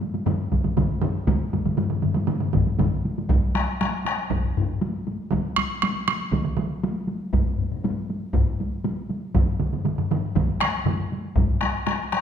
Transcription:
0.01 taiko high medium
0.14 taiko high medium
0.26 taiko low-mid loud
0.26 taiko mid medium
0.26 taiko high medium
0.52 taiko medium
0.52 taiko low-mid medium
0.52 taiko mid medium
0.52 taiko high medium
0.64 taiko low-mid medium
0.64 taiko mid medium
0.64 taiko high soft
0.77 taiko medium
0.77 taiko low-mid loud
0.77 taiko mid medium
0.77 taiko high medium
1.02 taiko low-mid medium
1.02 taiko mid loud
1.02 taiko high medium
1.27 taiko loud
1.27 taiko low-mid medium
1.27 taiko mid medium
1.27 taiko high medium
1.53 taiko low-mid medium
1.53 taiko mid medium
1.53 taiko high medium
1.66 taiko low-mid medium
1.66 taiko mid medium
1.66 taiko high medium
1.77 taiko low-mid medium
1.77 taiko mid medium
1.77 taiko high medium
1.90 taiko low-mid medium
1.90 taiko mid medium
2.02 taiko low-mid medium
2.02 taiko mid medium
2.02 taiko high medium
2.14 taiko low-mid medium
2.14 taiko mid medium
2.14 taiko high medium
2.27 taiko low-mid medium
2.27 taiko mid medium
2.27 taiko high medium
2.40 taiko low-mid medium
2.40 taiko mid medium
2.53 taiko medium
2.53 taiko low-mid medium
2.53 taiko mid medium
2.53 taiko high medium
2.66 taiko high soft
2.79 taiko medium
2.79 taiko low-mid medium
2.79 taiko mid loud
2.79 taiko high medium
3.05 taiko high medium
3.18 taiko high medium
3.29 taiko loud
3.29 taiko low-mid medium
3.29 taiko high medium
3.43 taiko high soft
3.55 taiko rim medium
3.55 taiko high medium
3.68 taiko high soft
3.81 taiko rim medium
3.81 taiko high medium
3.93 taiko high soft
4.06 taiko rim medium
4.06 taiko high soft
4.18 taiko high soft
4.30 taiko loud
4.30 taiko low-mid medium
4.30 taiko high medium
4.44 taiko low-mid medium
4.57 taiko low-mid loud
4.69 taiko high soft
4.81 taiko high medium
5.07 taiko high medium
5.20 taiko high soft
5.31 taiko medium
5.31 taiko mid medium
5.31 taiko high medium
5.45 taiko high soft
5.56 taiko rim medium
5.56 taiko high medium
5.70 taiko high soft
5.82 taiko rim medium
5.82 taiko high medium
5.96 taiko high soft
6.08 taiko rim medium
6.08 taiko high medium
6.21 taiko high soft
6.32 taiko medium
6.32 taiko mid medium
6.32 taiko high medium
6.45 taiko mid medium
6.57 taiko mid medium
6.57 taiko high medium
6.71 taiko high soft
6.83 taiko high medium
6.96 taiko high soft
7.08 taiko high medium
7.20 taiko high soft
7.33 taiko medium
7.33 taiko low-mid medium
7.33 taiko high medium
7.46 taiko low-mid medium
7.46 taiko high soft
7.58 taiko low-mid medium
7.71 taiko low-mid medium
7.71 taiko high soft
7.84 taiko low-mid medium
7.84 taiko high medium
7.96 taiko high soft
8.10 taiko high soft
8.23 taiko high soft
8.33 taiko medium
8.33 taiko low-mid medium
8.33 taiko high medium
8.60 taiko high medium
8.84 taiko high medium
8.97 taiko high soft
9.09 taiko high soft
9.22 taiko high soft
9.34 taiko medium
9.34 taiko low-mid medium
9.34 taiko mid medium
9.34 taiko high medium
9.48 taiko high soft
9.60 taiko low-mid medium
9.60 taiko mid medium
9.60 taiko high medium
9.72 taiko low-mid medium
9.72 taiko mid medium
9.72 taiko high soft
9.85 taiko low-mid medium
9.85 taiko mid medium
9.85 taiko high medium
9.98 taiko low-mid medium
9.98 taiko mid medium
9.98 taiko high soft
10.11 taiko low-mid medium
10.11 taiko mid medium
10.11 taiko high soft
10.23 taiko high soft
10.35 taiko medium
10.35 taiko low-mid medium
10.35 taiko mid medium
10.35 taiko high medium
10.48 taiko high soft
10.60 taiko rim medium
10.60 taiko high soft
10.74 taiko high soft
10.85 taiko low-mid medium
10.85 taiko mid loud
10.85 taiko high medium
11.00 taiko high soft
11.12 taiko high soft
11.25 taiko high soft
11.36 taiko medium
11.36 taiko low-mid medium
11.36 taiko high medium
11.50 taiko high soft
11.61 taiko rim medium
11.61 taiko high soft
11.75 taiko high soft
11.86 taiko rim medium
11.86 taiko high medium
12.00 taiko high soft
12.12 taiko rim medium
12.12 taiko high soft

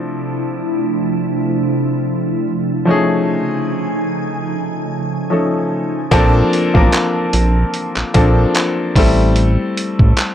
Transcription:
0.00 2.84 C3 medium
0.00 2.42 F3 medium
0.00 6.08 F3 medium
0.00 6.08 A3 medium
0.00 2.43 C4 medium
0.00 2.43 D4 medium
0.00 2.84 D4 medium
0.00 2.44 E4 medium
0.00 2.84 E4 medium
0.00 2.45 A4 medium
2.85 6.09 C#3 medium
2.85 5.26 F3 medium
2.85 5.26 A3 medium
2.85 5.27 C#4 medium
2.85 6.09 D#4 medium
2.85 5.27 D#4 medium
2.85 6.09 G#5 medium
2.90 5.28 G#4 medium
5.30 6.10 F3 medium
5.30 6.12 A3 soft
5.30 6.12 C#4 soft
5.30 6.12 D#4 medium
5.30 6.12 A4 medium
6.11 6.43 A#1 loud
6.11 6.60 F3 loud
6.11 6.60 A#3 loud
6.11 6.60 C4 loud
6.11 6.61 D4 loud
6.11 6.61 A4 loud
6.11 kick loud
6.11 closed hi-hat medium
6.53 closed hi-hat medium
6.74 6.89 A1 medium
6.74 7.85 F3 medium
6.74 7.85 A#3 medium
6.74 7.85 C4 medium
6.74 7.86 D4 medium
6.74 7.86 A#4 medium
6.74 kick medium
6.92 clap loud
6.92 closed hi-hat medium
7.33 7.65 A#1 medium
7.33 closed hi-hat medium
7.74 closed hi-hat medium
7.97 8.04 A#1 soft
7.97 clap medium
8.14 8.46 A#1 medium
8.14 8.95 F3 medium
8.14 8.96 A#3 medium
8.14 8.95 C4 medium
8.14 8.96 D4 medium
8.14 8.96 A4 loud
8.14 kick medium
8.14 closed hi-hat medium
8.55 clap loud
8.55 closed hi-hat medium
8.96 9.58 A1 loud
8.96 10.26 G3 medium
8.96 10.26 A3 medium
8.96 10.26 C4 medium
8.96 10.27 E4 medium
8.96 10.27 A4 loud
8.96 kick loud
8.96 open hi-hat medium
9.36 closed hi-hat medium
9.77 closed hi-hat medium
9.99 10.13 A1 loud
9.99 kick medium
10.17 clap loud
10.17 closed hi-hat medium

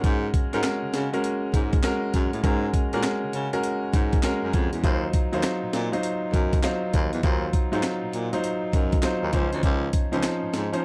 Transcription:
0.00 0.29 G#2 loud
0.00 0.34 G#3 medium
0.00 0.34 C#4 medium
0.00 0.34 F#4 medium
0.00 0.34 A#4 medium
0.00 kick loud
0.00 closed hi-hat medium
0.34 kick medium
0.34 closed hi-hat medium
0.53 0.62 G#2 medium
0.53 0.93 G#3 medium
0.53 0.93 C#4 medium
0.53 0.94 F#4 medium
0.53 0.94 A#4 loud
0.53 closed hi-hat medium
0.63 snare loud
0.63 clap medium
0.63 closed hi-hat medium
0.83 0.87 C#3 soft
0.94 1.10 C#3 medium
0.94 snare medium
0.94 closed hi-hat medium
1.13 1.67 G#3 medium
1.13 1.67 C#4 medium
1.13 1.67 F#4 medium
1.13 1.68 A#4 medium
1.13 closed hi-hat soft
1.24 closed hi-hat medium
1.54 1.79 G#2 medium
1.54 kick medium
1.54 closed hi-hat medium
1.73 kick loud
1.73 closed hi-hat soft
1.83 2.32 G#3 medium
1.83 2.32 C#4 medium
1.83 2.32 F#4 medium
1.83 2.33 A#4 loud
1.83 snare loud
1.83 clap medium
1.83 closed hi-hat medium
2.14 2.30 F#2 loud
2.14 kick medium
2.14 closed hi-hat medium
2.33 2.42 A2 medium
2.33 closed hi-hat soft
2.43 2.69 G#2 loud
2.43 2.78 G#3 medium
2.43 2.78 C#4 medium
2.43 2.78 F#4 medium
2.43 2.78 A#4 medium
2.43 kick loud
2.43 closed hi-hat medium
2.74 kick medium
2.74 closed hi-hat medium
2.93 3.02 A#2 medium
2.93 3.33 G#3 medium
2.93 3.33 C#4 medium
2.93 3.34 F#4 medium
2.93 3.34 A#4 medium
2.93 closed hi-hat soft
3.03 snare loud
3.03 clap medium
3.03 closed hi-hat medium
3.24 3.28 C#3 soft
3.33 3.50 C#3 medium
3.33 closed hi-hat medium
3.53 4.07 G#3 medium
3.53 4.07 C#4 medium
3.53 4.07 F#4 medium
3.53 4.07 A#4 loud
3.53 closed hi-hat soft
3.63 closed hi-hat medium
3.93 4.19 G#2 medium
3.93 kick loud
3.93 closed hi-hat medium
4.13 kick medium
4.13 closed hi-hat soft
4.23 4.72 G#3 medium
4.23 4.72 C#4 medium
4.23 4.72 F#4 medium
4.23 4.73 A#4 medium
4.23 snare loud
4.23 clap medium
4.23 closed hi-hat medium
4.43 4.52 F#2 medium
4.53 4.70 F2 loud
4.53 kick medium
4.53 closed hi-hat medium
4.73 4.82 E2 medium
4.73 closed hi-hat soft
4.84 5.09 D#2 loud
4.84 5.18 F#3 medium
4.84 5.18 D#4 medium
4.84 5.18 F4 medium
4.84 5.18 C5 medium
4.84 kick loud
4.84 closed hi-hat medium
5.13 kick medium
5.13 closed hi-hat medium
5.32 5.42 D#2 medium
5.32 5.73 F#3 medium
5.32 5.73 D#4 medium
5.32 5.74 F4 medium
5.32 5.74 C5 medium
5.32 closed hi-hat soft
5.43 snare loud
5.43 clap medium
5.43 closed hi-hat medium
5.63 5.67 A#2 soft
5.73 5.90 A#2 medium
5.73 snare medium
5.73 closed hi-hat medium
5.92 6.47 F#3 medium
5.92 6.47 D#4 medium
5.92 6.47 F4 medium
5.92 6.47 C5 loud
5.92 closed hi-hat soft
6.03 closed hi-hat medium
6.34 6.59 F#2 medium
6.34 kick medium
6.34 closed hi-hat medium
6.53 kick medium
6.53 closed hi-hat medium
6.63 7.12 F#3 medium
6.63 7.12 D#4 medium
6.63 7.12 F4 medium
6.63 7.12 C5 medium
6.63 snare loud
6.63 clap medium
6.63 closed hi-hat medium
6.94 7.10 D#2 loud
6.94 kick medium
6.94 closed hi-hat medium
7.13 7.22 E2 medium
7.13 closed hi-hat soft
7.23 7.49 D#2 loud
7.23 7.58 F#3 medium
7.23 7.58 D#4 medium
7.23 7.58 F4 medium
7.23 7.58 C5 medium
7.23 kick loud
7.23 closed hi-hat medium
7.53 kick medium
7.53 closed hi-hat medium
7.72 7.82 G#2 medium
7.72 8.13 F#3 medium
7.72 8.13 D#4 medium
7.72 8.13 F4 medium
7.72 8.13 C5 medium
7.72 closed hi-hat medium
7.83 snare loud
7.83 clap medium
7.83 closed hi-hat medium
8.03 8.07 A#2 soft
8.13 8.30 A#2 medium
8.13 closed hi-hat medium
8.33 8.87 F#3 medium
8.33 8.87 D#4 medium
8.33 8.87 F4 medium
8.33 8.88 C5 loud
8.33 closed hi-hat medium
8.44 closed hi-hat medium
8.73 8.99 F#2 medium
8.73 kick medium
8.73 closed hi-hat medium
8.92 kick medium
8.92 closed hi-hat soft
9.02 9.33 F#3 medium
9.02 9.32 D#4 medium
9.02 9.34 F4 medium
9.02 9.33 C5 medium
9.02 snare loud
9.02 clap medium
9.02 closed hi-hat medium
9.23 9.32 D#2 medium
9.33 9.50 C#2 loud
9.33 9.93 F3 medium
9.33 9.93 C#4 medium
9.33 9.94 D#4 medium
9.33 9.94 C5 loud
9.33 kick medium
9.33 closed hi-hat medium
9.53 9.62 D2 medium
9.53 closed hi-hat soft
9.63 9.89 C#2 loud
9.63 kick loud
9.63 closed hi-hat medium
9.93 kick medium
9.93 closed hi-hat medium
10.12 10.22 C#2 medium
10.12 10.53 F3 medium
10.12 10.53 C#4 medium
10.12 10.53 D#4 medium
10.12 10.53 C5 medium
10.12 closed hi-hat soft
10.23 snare loud
10.23 clap medium
10.23 closed hi-hat medium
10.43 10.47 G#2 soft
10.54 10.70 G#2 medium
10.54 snare medium
10.54 closed hi-hat medium
10.72 10.85 F3 medium
10.72 10.85 C#4 medium
10.72 10.85 D#4 medium
10.72 10.85 C5 medium
10.72 closed hi-hat soft

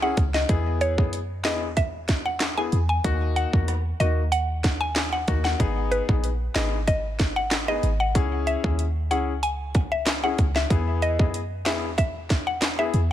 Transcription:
0.00 0.13 C#2 medium
0.00 0.20 C#4 medium
0.00 0.20 E4 medium
0.00 0.21 G#4 medium
0.00 0.13 F#5 medium
0.17 0.44 C#2 medium
0.17 kick loud
0.17 closed hi-hat medium
0.34 0.45 D#5 medium
0.34 snare medium
0.49 1.00 E2 loud
0.49 0.94 B3 loud
0.49 0.94 E4 medium
0.49 0.94 G#4 loud
0.49 kick loud
0.49 closed hi-hat medium
0.81 0.93 C#5 medium
0.81 closed hi-hat medium
0.98 1.47 F#2 medium
0.98 1.16 B3 medium
0.98 1.16 E4 medium
0.98 1.16 G#4 medium
0.98 kick loud
1.13 closed hi-hat medium
1.45 2.69 E2 medium
1.45 1.64 B3 medium
1.45 1.65 E4 medium
1.45 1.65 G#4 medium
1.45 1.57 D#5 medium
1.45 snare loud
1.45 clap loud
1.45 closed hi-hat medium
1.77 1.89 E5 medium
1.77 kick medium
1.77 closed hi-hat medium
2.08 kick medium
2.08 snare medium
2.08 closed hi-hat medium
2.26 2.36 F#5 medium
2.40 cross-stick medium
2.40 snare loud
2.40 clap medium
2.40 closed hi-hat medium
2.57 2.76 B3 medium
2.57 2.76 E4 medium
2.57 2.76 G#4 medium
2.57 2.68 G#5 medium
2.72 3.00 E2 medium
2.72 closed hi-hat medium
2.89 3.00 G#5 medium
3.04 3.46 D#2 loud
3.04 3.49 A#3 medium
3.04 3.49 D#4 medium
3.04 3.50 F#4 loud
3.04 kick loud
3.04 closed hi-hat medium
3.36 3.48 F#5 medium
3.36 closed hi-hat medium
3.53 3.93 E2 medium
3.53 3.71 A#3 medium
3.53 3.72 D#4 medium
3.53 3.72 F#4 medium
3.53 kick loud
3.68 cross-stick medium
3.68 closed hi-hat medium
4.00 5.24 D#2 loud
4.00 4.20 A#3 medium
4.00 4.20 D#4 medium
4.00 4.20 F#4 medium
4.00 4.12 D#5 medium
4.00 closed hi-hat medium
4.32 4.44 F#5 medium
4.32 closed hi-hat medium
4.64 kick medium
4.64 snare medium
4.64 closed hi-hat medium
4.81 4.91 G#5 medium
4.96 snare loud
4.96 clap medium
4.96 closed hi-hat medium
5.13 5.23 F#5 medium
5.28 5.55 D#2 medium
5.28 5.57 A#3 medium
5.28 5.58 D#4 medium
5.28 5.58 F#4 medium
5.28 kick medium
5.28 closed hi-hat medium
5.44 5.55 F#5 medium
5.44 snare medium
5.60 6.01 G#1 loud
5.60 6.04 B3 loud
5.60 6.05 D#4 medium
5.60 6.05 G#4 loud
5.60 kick loud
5.60 closed hi-hat medium
5.91 6.03 B4 medium
5.91 closed hi-hat medium
6.08 6.49 A#1 loud
6.08 6.27 B3 medium
6.08 6.27 D#4 medium
6.08 6.27 G#4 medium
6.08 kick loud
6.24 closed hi-hat medium
6.55 7.79 G#1 medium
6.55 6.75 B3 medium
6.55 6.75 D#4 medium
6.55 6.76 G#4 medium
6.55 6.67 D#5 medium
6.55 snare loud
6.55 clap loud
6.55 closed hi-hat medium
6.87 6.99 D#5 medium
6.87 kick medium
6.87 closed hi-hat medium
7.19 kick medium
7.19 snare medium
7.19 closed hi-hat medium
7.36 7.47 F#5 medium
7.51 cross-stick medium
7.51 snare loud
7.51 clap medium
7.51 closed hi-hat medium
7.68 7.86 B3 medium
7.68 7.86 D#4 medium
7.68 7.87 G#4 medium
7.68 7.79 D#5 medium
7.83 8.17 G#1 medium
7.83 closed hi-hat medium
8.00 8.11 F#5 medium
8.15 8.57 C#2 loud
8.15 8.60 C#4 medium
8.15 8.60 E4 medium
8.15 8.60 G#4 loud
8.15 kick loud
8.15 closed hi-hat medium
8.47 8.59 E5 medium
8.47 closed hi-hat medium
8.64 9.12 D#2 loud
8.64 8.82 C#4 medium
8.64 8.82 E4 medium
8.64 8.82 G#4 medium
8.64 kick loud
8.79 closed hi-hat medium
9.11 10.34 C#2 medium
9.11 9.30 C#4 medium
9.11 9.31 E4 medium
9.11 9.31 G#4 medium
9.11 9.23 F#5 medium
9.11 closed hi-hat medium
9.43 9.55 G#5 medium
9.43 closed hi-hat medium
9.75 kick medium
9.75 closed hi-hat medium
9.92 10.02 E5 medium
10.06 cross-stick medium
10.06 snare loud
10.06 clap medium
10.06 closed hi-hat medium
10.23 10.42 C#4 medium
10.23 10.42 E4 medium
10.23 10.42 G#4 medium
10.23 10.34 F#5 medium
10.38 10.66 C#2 medium
10.38 kick medium
10.38 closed hi-hat medium
10.56 10.66 E5 medium
10.56 snare medium
10.70 11.21 E2 loud
10.70 11.15 B3 loud
10.70 11.15 E4 medium
10.70 11.15 G#4 loud
10.70 kick loud
10.70 closed hi-hat medium
11.02 11.14 D#5 medium
11.02 closed hi-hat medium
11.19 11.68 F#2 medium
11.19 11.37 B3 medium
11.19 11.37 E4 medium
11.19 11.38 G#4 medium
11.19 kick loud
11.34 closed hi-hat medium
11.66 12.90 E2 medium
11.66 11.86 B3 medium
11.66 11.86 E4 medium
11.66 11.86 G#4 medium
11.66 11.78 E5 medium
11.66 snare loud
11.66 clap loud
11.66 closed hi-hat medium
11.98 12.10 E5 medium
11.98 kick medium
11.98 closed hi-hat medium
12.30 kick medium
12.30 snare medium
12.30 closed hi-hat medium
12.47 12.57 F#5 medium
12.62 cross-stick medium
12.62 snare loud
12.62 clap medium
12.62 closed hi-hat medium
12.79 12.97 B3 medium
12.79 12.97 E4 medium
12.79 12.97 G#4 medium
12.79 12.89 E5 medium
12.94 13.12 E2 loud
12.94 closed hi-hat medium

